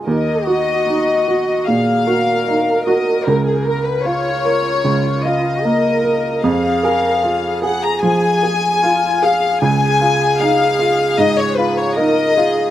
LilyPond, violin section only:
\new Staff \with { instrumentName = "Violin section" } { \time 4/4 \key ees \minor \tempo 4 = 76 ees''2 f''4. ees''8 | bes'16 aes'16 bes'16 ces''16 des''4. ees''4. | f''4. ges''16 bes''16 aes''4. f''8 | aes''4 f''4 ees''16 des''16 ces''16 des''16 ees''4 | }